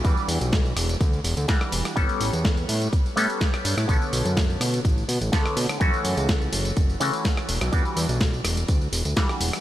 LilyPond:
<<
  \new Staff \with { instrumentName = "Clav" } { \time 4/4 \key e \dorian \tempo 4 = 125 <e g d' fis'>2. <e g d' fis'>4 | <g b cis' a'>2~ <g b cis' a'>8 <g b cis' a'>4. | <d b cis' a'>2. <d b cis' a'>4 | <e a cis' fis'>2~ <e a cis' fis'>8 <e a cis' fis'>4 r8 |
<e g d' fis'>2. <e g d' fis'>4 | }
  \new Staff \with { instrumentName = "Analog synth bass" } { \clef bass \time 4/4 \key e \dorian e,16 r16 e,16 b,,8. e,,8 d,8 e,,16 d,16 r8 e,,16 r16 | a,,16 r16 a,,16 e,8. a,8 r8 a,16 r8. g,16 a,16 | b,,16 r16 b,,16 fis,8. b,8 a,,8 b,16 a,,16 r8 b,16 r16 | fis,16 r16 fis,16 cis,8. fis,,8 fis,,8 cis16 r8. e,,16 b,,16 |
e,16 r16 e,16 b,,8. e,,8 d,8 e,,16 d,16 r8 e,,16 r16 | }
  \new DrumStaff \with { instrumentName = "Drums" } \drummode { \time 4/4 <hh bd tamb>16 tamb16 <hho tamb>16 <hh tamb>16 <hh bd sn tamb>16 tamb16 <hho ss tamb>16 <hh tamb>16 <hh bd tamb>16 tamb16 <hho tamb>16 <hh tamb>16 <hh bd sn tamb>16 <ss tamb>16 <hho tamb>16 <hh ss tamb>16 | <hh bd tamb>16 <hh tamb>16 <hho tamb>16 <hh tamb>16 <hh bd sn tamb>16 <hh tamb>16 <hho tamb>16 <hh tamb>16 <hh bd tamb>16 tamb16 <hho tamb>16 <hh tamb>16 <hh bd sn tamb>16 <hh ss tamb>16 <hho tamb>16 <hh ss tamb>16 | <hh bd tamb>16 tamb16 <hho tamb>16 <hh tamb>16 <hh bd sn tamb>16 tamb16 <hho ss tamb>16 <hh tamb>16 <hh bd tamb>16 tamb16 <hho tamb>16 <hh tamb>16 <hh bd sn tamb>16 <ss tamb>16 <hho tamb>16 <hh ss tamb>16 | <hh bd tamb>16 tamb16 <hho tamb>16 <hh tamb>16 <hh bd sn tamb>16 tamb16 <hho tamb>16 <hh tamb>16 <hh bd tamb>16 tamb16 <hho tamb>16 <hh tamb>16 <hh bd sn tamb>16 <ss tamb>16 <hho tamb>16 <hh ss tamb>16 |
<hh bd tamb>16 tamb16 <hho tamb>16 <hh tamb>16 <hh bd sn tamb>16 tamb16 <hho ss tamb>16 <hh tamb>16 <hh bd tamb>16 tamb16 <hho tamb>16 <hh tamb>16 <hh bd sn tamb>16 <ss tamb>16 <hho tamb>16 <hh ss tamb>16 | }
>>